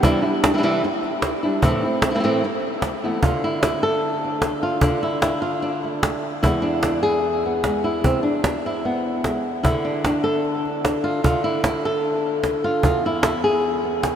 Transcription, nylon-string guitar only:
0.03 C3 E3 G3 D4 E4
0.22 G3 D4 E4
0.43 G3 D4 E4
0.54 E3 G3 D4 E4
0.58 E3 G3 D4 E4
0.63 C3 E3 G3 D4 E4
0.84 muted nylon-string guitar stroke
1.43 G3 D4 E4
1.62 A2 E3 A3 C4 E4
1.83 A3 C4 E4
2.03 A3 C4 E4
2.10 E3 A3 C4 E4
2.15 E3 A3 C4 E4
2.19 E3 A3 C4 E4
2.24 A2 E3 A3 C4 E4
2.44 muted nylon-string guitar stroke
3.04 E3 A3 B3 E4
3.22 D3 F4
3.44 E4
3.63 E4
3.83 A4
4.24 D4
4.63 F4
4.82 D3 D4
5.03 E4
5.22 E4
5.42 F4
5.62 D4
5.84 A3
6.04 A3
6.43 E2 E3 G#3 B3 E4
6.62 D4
6.82 D4
7.03 G#4
7.46 B3
7.66 G#3 B3
7.84 E4
8.04 E2 C4
8.23 D4
8.44 D4
8.66 E4
8.85 B3
9.26 G#3
9.63 D3 E4
9.85 D4
10.06 D4
10.24 A4
10.85 D4
11.04 F4
11.23 D3 F4
11.44 E4
11.65 E4
11.85 A4
12.64 F4
12.85 E2 F4
13.06 E4
13.24 E4
13.44 G#4
13.85 B3

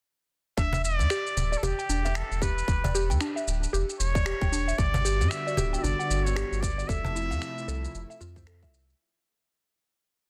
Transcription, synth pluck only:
0.58 D4
0.73 E5
1.10 G4
1.52 D5
1.63 G4
1.79 G5
1.89 D4
2.05 E5
2.42 G4
2.84 D5
2.95 G4
3.10 G5
3.21 D4
3.36 E5
3.73 G4
4.15 D5
4.26 G4
4.41 G5
4.52 D4
4.68 E5
5.05 G4
5.47 D5
5.57 G4
5.73 G5
5.84 D4
5.99 F#5
6.36 G4
6.78 D5
6.89 A4
7.04 A5
7.15 E4
7.31 F5
7.68 A4
8.10 E5
8.21 F4
8.36 C5
8.47 A4
8.63 E5

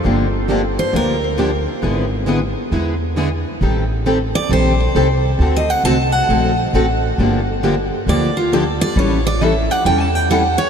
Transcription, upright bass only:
0.05 G1
0.93 D2
1.83 G#1
2.72 E2
3.61 A1
4.49 A#1
4.95 C2
5.39 D2
5.83 C2
6.29 A#1
6.73 A1
7.18 G1
8.07 D2
8.96 A1
9.85 E2

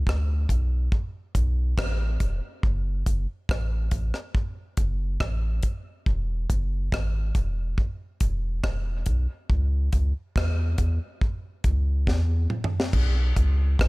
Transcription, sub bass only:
0.07 D2
0.50 B1
1.35 B1
1.78 A1
2.21 E1
2.64 F#1
3.07 F#1
3.50 A1
3.92 A1
4.78 F#1
5.21 A1
6.07 E1
6.50 F#1
6.93 G#1
7.35 E1
8.21 E1
8.64 E1
9.07 B1
9.50 C#2
9.93 C#2
10.36 E2
10.79 E2
11.65 C#2
12.08 E2
12.94 B1
13.37 C#2
13.80 B1

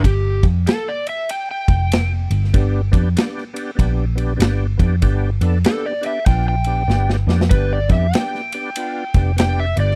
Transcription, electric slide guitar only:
0.05 G4
0.68 A4
0.88 D5
1.09 E5
1.31 G5
1.51 G5
5.66 A4
5.86 D5
6.06 E5
6.27 G5
6.49 G5
7.50 B4
7.73 D5
7.93 E5
8.15 G5
9.39 G5
9.60 E5
9.80 D5

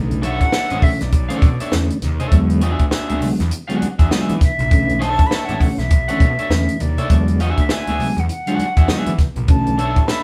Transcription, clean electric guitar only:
0.22 D4 A4 C#5 E5
0.53 D4 A4 C#5 E5
0.71 D4 A4 C#5 E5
1.29 D4 A4 C#5 F#5
1.61 D4 A4 C#5 E5
2.20 D4 A4 C#5 E5
2.62 D4 F#4 G#4 E5
2.91 D4 F#4 G#4 E5
3.09 D4 F#4 G#4 E5
3.68 D4 F#4 G#4 F#5
3.99 D4 F#4 G#4 E5
4.11 D4 F#4 G#4 E5
4.99 D4 A4 C#5 E5
5.30 D4 A4 C#5 E5
5.48 D4 A4 C#5 E5
6.08 D4 A4 C#5 F#5
6.39 D4 A4 C#5 E5
6.98 D4 A4 C#5 E5
7.40 D4 F#4 G#4 E5
7.70 D4 F#4 G#4 E5
7.88 D4 F#4 G#4 E5
8.48 D4 F#4 G#4 F#5
8.77 D4 F#4 G#4 E5
8.88 D4 F#4 G#4 E5
9.78 D4 A4 C#5 E5
10.08 D4 A4 C#5 E5

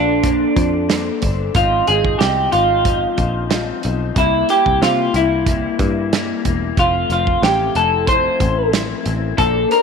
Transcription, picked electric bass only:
Already playing: A#1
0.56 F2
1.23 G1
1.55 G#1
1.88 G#1
2.21 C2
2.53 G#1
3.18 A#1
3.85 B1
4.16 C2
4.66 C2
4.82 C3
5.14 C2
5.79 G2
6.45 E1
6.77 F1
7.10 F1
7.42 A1
7.75 F1
8.40 A1
9.06 A1
9.38 A#1

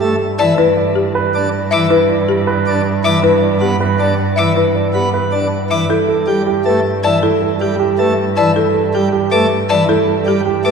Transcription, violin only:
0.39 A5
1.72 D6
3.04 D6
4.37 D6
5.71 D6
7.03 A5
8.37 A5
9.32 D6
9.69 A5
10.65 D6

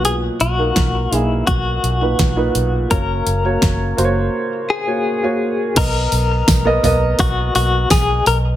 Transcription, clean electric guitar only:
0.05 G#4
0.41 F#4
1.18 E4
1.47 F#4
2.91 A#4
4.70 G#4
5.77 A#4
7.20 F#4
7.56 F#4
7.91 G#4
8.27 A#4

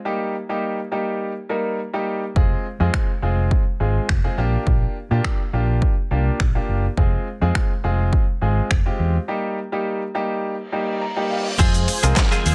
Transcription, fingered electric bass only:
2.36 F1
2.80 F2
3.23 F1
3.80 G#1
4.09 F1
4.38 A#1
4.67 A#1
5.11 A#2
5.53 A#1
6.11 C2
6.40 A#1
6.69 F#1
6.97 F1
7.42 F2
7.84 F1
8.42 G#1
8.71 F1
8.99 E2
11.59 F2
12.03 C2
12.46 D#2

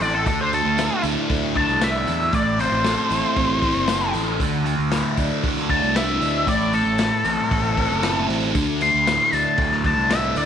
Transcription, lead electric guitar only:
0.02 D5
0.14 A4
0.27 A4
0.41 C5
0.54 A4
1.57 A5
1.84 E5
2.34 D5
2.61 C5
5.70 A5
5.96 E5
6.49 D5
6.74 A4
8.82 C6
9.34 A5
9.86 A5
10.10 E5
10.38 D5

